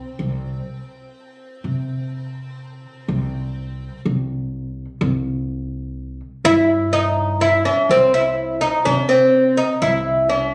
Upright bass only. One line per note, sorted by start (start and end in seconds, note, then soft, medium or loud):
0.19 0.59 C2 medium
1.64 2.83 C3 medium
3.08 3.88 C2 medium
4.05 4.84 C2 medium
5.01 6.20 C2 medium
6.44 7.63 G2 medium
7.89 8.68 C2 medium
8.86 9.65 C3 medium
9.82 10.54 C2 loud